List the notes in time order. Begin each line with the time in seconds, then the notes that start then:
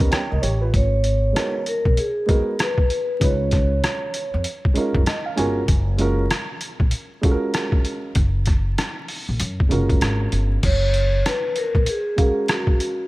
Already playing: G3 B3 C#4 D#4 A#4
0.00 D#2, kick, closed hi-hat
0.11 C#5 G5, cross-stick, closed hi-hat
0.31 C#2 A#4 D#5
0.42 A1 G4 C#5, closed hi-hat
0.61 F4 B4
0.74 G#1 C#5, kick, closed hi-hat
1.04 closed hi-hat
1.33 G#3 B3 D#4 F#4 A#4, cross-stick, closed hi-hat
1.66 A#4, closed hi-hat
1.85 B1, kick
1.97 G#4, closed hi-hat
2.26 G#3 B3 D#4 F#4 A#4, kick, closed hi-hat
2.59 B4, cross-stick, closed hi-hat
2.78 kick
2.90 closed hi-hat
3.20 C#2 G#3 C#4 D#4 F4 B4 C#5, kick, closed hi-hat
3.51 kick, cross-stick, closed hi-hat
3.84 cross-stick, closed hi-hat
4.14 closed hi-hat
4.34 F2
4.44 closed hi-hat
4.65 kick
4.74 G#3 C#4 D#4 F4 A#4, closed hi-hat
4.95 F#2, kick
5.06 D#5, cross-stick, closed hi-hat
5.26 F5
5.36 G1 G#3 C#4 F4 F#4 A#4 G#5, closed hi-hat
5.68 F#1, kick, closed hi-hat
5.98 G#3 C#4 F4 F#4 A#4, closed hi-hat
6.31 cross-stick, closed hi-hat
6.61 closed hi-hat
6.80 A#1, kick
6.91 closed hi-hat
7.21 G#3 C#4 F4 F#4 A4, kick, closed hi-hat
7.31 A#4
7.54 cross-stick, closed hi-hat
7.72 kick
7.85 closed hi-hat
8.15 F#1, kick, closed hi-hat
8.46 kick, cross-stick, closed hi-hat
8.78 cross-stick, closed hi-hat
9.08 open hi-hat
9.29 A#1
9.40 F#2, closed hi-hat
9.60 kick
9.69 F#1 G#3 C#4 F4 F#4 A#4, closed hi-hat
9.89 kick, closed hi-hat
10.01 G#1, cross-stick, closed hi-hat
10.32 G1, closed hi-hat
10.63 F#1 C#5, kick, closed hi-hat, crash
10.94 closed hi-hat
11.26 B4, cross-stick, closed hi-hat
11.56 A#4, closed hi-hat
11.75 A#1, kick
11.86 G#4, closed hi-hat
12.16 G#3 C#4 F#4 G#4 A#4 F5, kick, closed hi-hat
12.48 F#4, cross-stick, closed hi-hat
12.67 kick
12.80 closed hi-hat